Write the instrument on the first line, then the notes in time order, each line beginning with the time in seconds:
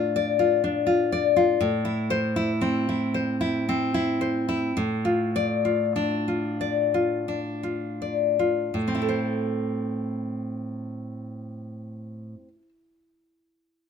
nylon-string guitar
Already playing: A2 D4 F4
0.16 D5
0.39 F4
0.64 D4
0.87 F4
1.12 D5
1.36 F4
1.61 A2
1.85 E4
2.10 C5
2.36 E4
2.61 C4
2.89 E4
3.14 C5
3.41 E4
3.69 C4
3.94 E4
4.21 C5
4.49 E4
4.77 A2
5.05 F4
5.36 D5
5.65 F4
5.96 D4
6.28 F4
6.61 D5
6.94 F4
7.28 D4
7.63 F4
8.02 D5
8.39 F4
8.74 A2
8.88 C4
8.95 E4
9.02 A4
9.09 C5